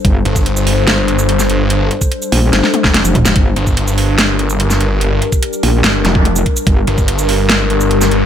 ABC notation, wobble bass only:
X:1
M:4/4
L:1/16
Q:1/4=145
K:Gm
V:1 name="Wobble bass" clef=bass
G,,,2 z12 z2 | z6 B,,,2 G,,, z4 F,,,3 | G,,,2 z12 z2 | z6 B,,,2 z2 F,,,4 z2 |
G,,,2 z12 z2 |]